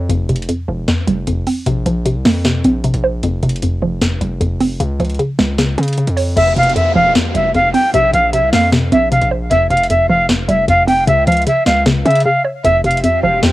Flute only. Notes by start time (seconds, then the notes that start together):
6.37 E5
6.58 F5
6.76 E5
6.95 F5
7.35 E5
7.55 F5
7.73 G5
7.94 E5
8.14 F5
8.33 E5
8.52 F5
8.92 E5
9.11 F5
9.50 E5
9.70 F5
9.90 E5
10.09 F5
10.48 E5
10.69 F5
10.87 G5
11.08 E5
11.27 F5
11.48 E5
11.66 F5
12.05 E5
12.25 F5
12.64 E5
12.86 F5
13.04 E5
13.22 F5